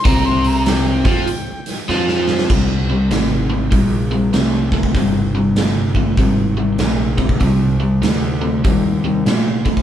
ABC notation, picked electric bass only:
X:1
M:4/4
L:1/8
Q:"Swing" 1/4=98
K:Cm
V:1 name="Picked electric bass" clef=bass
C,,3 F,, z2 F,,2 | C,,2 A,,,2 B,,,2 C,,2 | G,,,2 G,,,2 A,,,2 B,,,2 | C,,2 D,,2 E,,2 B,, z |]